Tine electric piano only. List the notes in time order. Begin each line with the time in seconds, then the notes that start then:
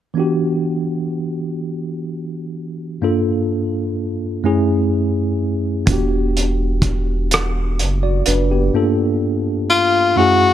0.14 E3 B3 D4 F#4
0.20 G4
3.02 G2 A#3 D4 F4 A4
4.43 F#2 A3 C#4 E4 G#4
5.86 B3 D4 F#4
5.92 G4
8.03 F#4 D5
8.27 D4 B4
8.51 B3 G4
8.74 G2 A#3 D4 F4 A4
10.16 F#2 A3 C#4 E4 G#4